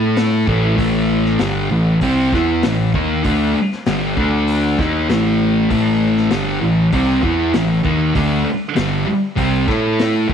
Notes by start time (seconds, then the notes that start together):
Already playing: A2 A3 E4 A4
0.16 snare, open hi-hat
0.47 A1 A2 E3 A3, kick
0.76 A1 A2 E3 A3, kick, open hi-hat
1.25 snare
1.39 G1 G2 D3 G3, snare, open hi-hat
1.70 A1 A2 E3
2.01 C2 C3 G3 C4, kick, open hi-hat
2.33 E2 E3 B3 E4, kick, snare
2.63 A1 A2 E3, snare, open hi-hat
2.94 D#2 D#3 A#3 D#4, kick
3.24 D2 D3 A3 D4, kick, open hi-hat
3.56 muted distorted electric guitar stroke, muted picked electric bass stroke
3.72 snare
3.86 G1 G2 D3 G3, snare, open hi-hat
4.17 D2 D3 A3 D4, kick
4.48 open hi-hat
4.79 D#2 D#3 A#3 D#4, kick, snare
5.09 A1 A2 E3 A3, snare, open hi-hat
5.70 A1 A2 E3 A3, kick, open hi-hat
6.17 snare
6.30 G1 G2 D3 G3, snare, open hi-hat
6.61 A1 A2 E3
6.92 C2 C3 G3 C4, kick, open hi-hat
7.22 E2 E3 B3 E4, kick
7.54 A1 A2 E3, snare, open hi-hat
7.84 D#2 D#3 A#3 D#4, kick
8.14 D2 D3 A3 D4, kick, open hi-hat
8.45 muted distorted electric guitar stroke, muted picked electric bass stroke
8.75 G1 G2 D3 G3, snare, open hi-hat
9.06 muted distorted electric guitar stroke, muted picked electric bass stroke
9.36 C2 C3 G3 C4, kick, open hi-hat
9.67 A2 A3 E4 A4, kick, snare
9.99 snare, open hi-hat
10.28 A1 A2 E3 A3, kick